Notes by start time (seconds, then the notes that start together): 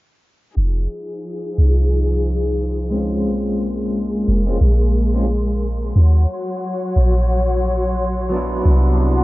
0.55 F1 F3 D#4 G#4 C6
1.58 C2
2.90 G#3 C4 C#4
2.96 F4
3.26 A#1 G#3 A#3
4.28 F1
4.46 G#3 C4 C#4 F4
4.61 A#1
5.14 G#3 C4 C#4 F4
5.95 D#2 F#3 F#4 C#5
6.96 A#1
8.29 F#3 B3 D4
8.35 E4
8.65 C2 C3 B3 D4 E4 F#4